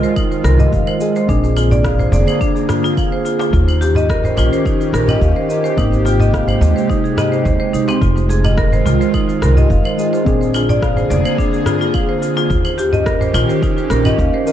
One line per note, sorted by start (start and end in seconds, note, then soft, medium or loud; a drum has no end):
0.00 1.27 D#3 medium
0.00 1.27 G#3 medium
0.00 1.27 F4 medium
0.00 0.15 C5 medium
0.00 cabasa soft
0.16 0.31 D#4 medium
0.16 kick medium
0.16 cabasa soft
0.16 claves medium
0.32 0.44 C5 medium
0.32 cabasa soft
0.44 0.64 C2 medium
0.44 0.58 A#4 medium
0.44 cross-stick medium
0.44 darbuka ka medium
0.44 cabasa medium
0.59 0.78 G#3 medium
0.59 0.78 D#4 medium
0.59 0.79 G4 medium
0.59 0.67 D#5 medium
0.59 darbuka dum medium
0.59 cabasa soft
0.72 0.83 F1 medium
0.72 0.86 F5 medium
0.72 kick loud
0.72 cabasa soft
0.87 0.99 C5 loud
0.87 claves medium
0.99 1.25 G#3 medium
0.99 1.26 D#4 medium
0.99 1.26 G#4 medium
0.99 1.14 D#5 medium
0.99 cabasa medium
1.16 1.28 C5 medium
1.16 darbuka ka medium
1.16 cabasa soft
1.27 2.06 A#1 medium
1.27 3.51 D3 medium
1.27 3.51 A#3 medium
1.27 1.53 C4 medium
1.27 1.54 D4 medium
1.27 1.43 D4 medium
1.27 3.51 G#4 medium
1.27 1.54 G#4 loud
1.27 kick loud
1.27 cabasa soft
1.43 1.56 C5 medium
1.43 darbuka ka soft
1.43 cabasa soft
1.54 3.50 C4 medium
1.54 3.51 D4 medium
1.54 1.65 F4 medium
1.54 3.52 G#4 medium
1.54 darbuka tek medium
1.54 cabasa medium
1.54 claves medium
1.71 1.79 D5 loud
1.71 darbuka tek medium
1.71 darbuka dum medium
1.71 cabasa soft
1.85 1.98 F5 medium
1.85 kick loud
1.85 cross-stick medium
1.85 cabasa soft
1.99 2.12 C5 medium
1.99 darbuka dum medium
1.99 cabasa soft
2.12 2.22 F1 medium
2.12 2.26 D5 medium
2.12 darbuka tek medium
2.12 cabasa medium
2.27 2.40 C5 medium
2.27 cabasa soft
2.27 claves medium
2.41 2.55 D4 medium
2.41 kick loud
2.41 cabasa soft
2.56 2.68 G#4 medium
2.56 cabasa soft
2.69 2.78 F4 medium
2.69 cross-stick medium
2.69 darbuka dum medium
2.69 cabasa medium
2.84 2.97 F4 medium
2.84 cabasa soft
2.97 3.11 F5 medium
2.97 kick loud
2.97 cabasa soft
2.97 claves medium
3.12 3.24 C5 medium
3.25 3.39 F4 medium
3.25 darbuka ka soft
3.25 cabasa medium
3.39 3.52 F4 medium
3.39 darbuka tek medium
3.39 cabasa soft
3.52 4.30 D#2 medium
3.52 5.75 D#3 medium
3.52 5.75 C#4 medium
3.52 3.67 F4 medium
3.52 7.98 G4 medium
3.52 kick loud
3.52 cabasa soft
3.68 3.81 C5 medium
3.68 darbuka ka soft
3.68 cabasa soft
3.68 claves medium
3.81 3.90 G4 medium
3.81 darbuka tek medium
3.81 cabasa medium
3.95 4.04 D#5 loud
3.95 darbuka tek medium
3.95 darbuka dum medium
3.95 cabasa soft
4.09 4.23 A#4 loud
4.09 kick loud
4.09 cross-stick medium
4.09 cabasa soft
4.24 4.36 C5 medium
4.24 darbuka dum medium
4.24 cabasa soft
4.37 4.47 A#1 medium
4.37 4.51 F4 loud
4.37 darbuka tek medium
4.37 cabasa medium
4.37 claves medium
4.53 4.64 C5 medium
4.53 cabasa soft
4.66 4.80 D#4 medium
4.66 kick loud
4.66 cabasa soft
4.81 4.93 C5 medium
4.81 cabasa soft
4.92 5.13 A#1 medium
4.92 5.07 A#4 medium
4.92 cross-stick medium
4.92 darbuka ka soft
4.92 cabasa medium
5.08 5.27 C#4 medium
5.08 5.27 F4 medium
5.08 5.28 G4 medium
5.08 5.16 D#5 medium
5.08 darbuka dum medium
5.08 cabasa soft
5.08 claves medium
5.21 5.31 D#2 medium
5.21 5.35 F5 medium
5.21 kick loud
5.21 cabasa soft
5.36 5.48 C5 medium
5.49 5.74 C#4 medium
5.49 5.75 F4 medium
5.49 5.75 A#4 medium
5.49 5.63 D#5 medium
5.49 cabasa medium
5.64 5.76 C5 medium
5.64 darbuka ka soft
5.64 cabasa soft
5.77 6.55 G#1 medium
5.77 8.00 C3 medium
5.77 8.00 G#3 medium
5.77 6.02 A#3 medium
5.77 6.03 C4 medium
5.77 5.92 D#4 medium
5.77 6.03 G4 loud
5.77 kick loud
5.77 cabasa soft
5.77 claves medium
5.91 6.05 C5 medium
5.91 darbuka ka soft
5.91 cabasa soft
6.04 7.70 A#3 medium
6.04 7.71 C4 medium
6.04 6.14 F4 medium
6.04 7.72 G5 medium
6.04 darbuka tek medium
6.04 cabasa medium
6.20 6.28 D#5 medium
6.20 darbuka tek medium
6.20 darbuka dum medium
6.20 cabasa soft
6.34 6.47 F5 medium
6.34 kick loud
6.34 cross-stick medium
6.34 cabasa soft
6.47 6.60 C5 medium
6.47 darbuka dum medium
6.47 cabasa soft
6.47 claves medium
6.61 6.71 D#2 medium
6.61 6.75 D#5 medium
6.61 darbuka tek medium
6.61 cabasa medium
6.76 6.88 C5 medium
6.76 cabasa soft
6.89 7.04 D#4 medium
6.89 kick loud
6.89 cabasa soft
7.04 7.16 G#4 medium
7.04 cabasa soft
7.17 7.32 D#5 medium
7.17 cross-stick medium
7.17 darbuka dum medium
7.17 cabasa medium
7.17 claves medium
7.32 7.44 C5 medium
7.32 cabasa soft
7.45 7.56 D#2 loud
7.45 7.59 C5 loud
7.45 kick loud
7.45 cabasa soft
7.60 7.73 C5 loud
7.73 7.84 C2 medium
7.73 7.87 D#4 medium
7.73 darbuka ka soft
7.73 cabasa medium
7.88 8.01 C4 medium
7.88 darbuka tek medium
7.88 cabasa soft
7.88 claves medium
8.01 8.79 F1 medium
8.01 10.24 D#3 medium
8.01 10.24 G#3 medium
8.01 8.16 F4 medium
8.01 10.24 F4 medium
8.01 kick loud
8.01 cabasa soft
8.16 8.29 C5 medium
8.16 darbuka ka medium
8.16 cabasa soft
8.29 8.38 G#4 medium
8.29 darbuka tek medium
8.29 cabasa medium
8.44 8.52 D#5 medium
8.44 darbuka tek medium
8.44 darbuka dum medium
8.44 cabasa soft
8.44 claves medium
8.58 8.71 A#4 loud
8.58 kick loud
8.58 cross-stick medium
8.58 cabasa soft
8.72 8.85 C5 medium
8.72 darbuka dum medium
8.72 cabasa soft
8.86 8.96 C2 medium
8.86 8.99 F4 loud
8.86 darbuka tek medium
8.86 cabasa medium
9.01 9.13 C5 medium
9.01 cabasa soft
9.14 9.28 D#4 medium
9.14 kick medium
9.14 cabasa soft
9.14 claves medium
9.29 9.41 C5 medium
9.29 cabasa soft
9.41 9.61 C2 medium
9.41 9.56 A#4 medium
9.41 cross-stick medium
9.41 darbuka ka soft
9.41 cabasa medium
9.56 9.75 G#3 medium
9.56 9.76 D#4 medium
9.56 9.76 G4 medium
9.56 9.65 D#5 medium
9.56 darbuka dum medium
9.56 cabasa soft
9.70 9.80 F1 medium
9.70 9.84 F5 medium
9.70 kick medium
9.70 cabasa soft
9.85 9.97 C5 loud
9.85 claves medium
9.98 10.23 G#3 medium
9.98 10.23 D#4 medium
9.98 10.24 G#4 medium
9.98 10.12 D#5 medium
9.98 cabasa medium
10.13 10.25 C5 medium
10.13 darbuka ka medium
10.13 cabasa soft
10.25 11.03 A#1 medium
10.25 12.49 D3 medium
10.25 12.48 A#3 medium
10.25 10.50 C4 medium
10.25 10.51 D4 medium
10.25 10.40 D4 medium
10.25 12.48 G#4 medium
10.25 10.52 G#4 loud
10.25 kick loud
10.25 cabasa soft
10.41 10.54 C5 medium
10.41 darbuka ka soft
10.41 cabasa soft
10.52 12.48 C4 medium
10.52 12.49 D4 medium
10.52 10.63 F4 medium
10.52 darbuka tek medium
10.52 cabasa medium
10.52 claves medium
10.56 12.50 G#4 medium
10.69 10.77 D5 loud
10.69 darbuka tek medium
10.69 darbuka dum medium
10.69 cabasa soft
10.82 10.96 F5 medium
10.82 kick medium
10.82 cross-stick medium
10.82 cabasa soft
10.96 11.09 C5 medium
10.96 darbuka dum medium
10.96 cabasa soft
11.10 11.20 F1 loud
11.10 11.24 D5 medium
11.10 darbuka tek medium
11.10 cabasa medium
11.25 11.37 C5 medium
11.25 cabasa soft
11.25 claves medium
11.38 11.52 D4 medium
11.38 kick medium
11.38 cabasa soft
11.53 11.65 G#4 medium
11.53 cabasa soft
11.66 11.75 F4 loud
11.66 cross-stick medium
11.66 darbuka dum medium
11.66 cabasa medium
11.81 11.94 F4 loud
11.81 cabasa soft
11.94 12.08 F5 medium
11.94 kick medium
11.94 cabasa soft
11.94 claves medium
12.09 12.21 C5 medium
12.22 12.36 F4 medium
12.22 darbuka ka soft
12.22 cabasa medium
12.37 12.49 F4 loud
12.37 darbuka tek medium
12.37 cabasa soft
12.50 13.28 D#2 medium
12.50 14.52 D#3 medium
12.50 14.52 C#4 medium
12.50 12.64 F4 medium
12.50 14.52 G4 medium
12.50 kick loud
12.50 cabasa soft
12.65 12.78 C5 medium
12.65 darbuka ka soft
12.65 cabasa soft
12.65 claves medium
12.78 12.87 G4 loud
12.78 darbuka tek medium
12.78 cabasa medium
12.93 13.01 D#5 loud
12.93 darbuka tek medium
12.93 darbuka dum medium
12.93 cabasa soft
13.06 13.20 A#4 loud
13.06 kick loud
13.06 cross-stick medium
13.06 cabasa soft
13.21 13.33 C5 medium
13.21 darbuka dum medium
13.21 cabasa soft
13.34 13.44 A#1 loud
13.34 13.48 F4 loud
13.34 darbuka tek medium
13.34 cabasa medium
13.34 claves medium
13.49 13.61 C5 medium
13.49 cabasa soft
13.63 13.77 D#4 medium
13.63 kick medium
13.63 cabasa soft
13.78 13.90 C5 medium
13.78 cabasa soft
13.90 14.10 A#1 medium
13.90 14.04 A#4 loud
13.90 cross-stick medium
13.90 darbuka ka medium
13.90 cabasa medium
14.04 14.24 C#4 medium
14.04 14.24 F4 medium
14.04 14.25 G4 medium
14.04 14.13 D#5 loud
14.04 darbuka dum medium
14.04 cabasa soft
14.04 claves medium
14.18 14.29 D#2 loud
14.18 14.32 F5 medium
14.18 kick medium
14.18 cabasa soft
14.34 14.46 C5 loud
14.45 14.52 C#4 medium
14.45 14.52 F4 medium
14.45 14.52 A#4 medium
14.45 14.52 D#5 medium
14.45 cabasa medium